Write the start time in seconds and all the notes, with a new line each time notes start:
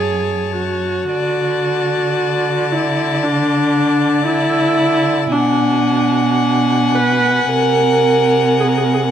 Already playing: F#2 G#4 C#5 A5
0.58 F#4
1.14 D3 D5 A5
2.72 E4
3.23 D4
4.27 E4
5.32 B2 D4 F#5 G#5
6.95 B4
7.49 C3 A#4
8.60 G#4
8.68 A#4
8.78 G#4
8.85 A#4
8.94 G#4
9.03 A#4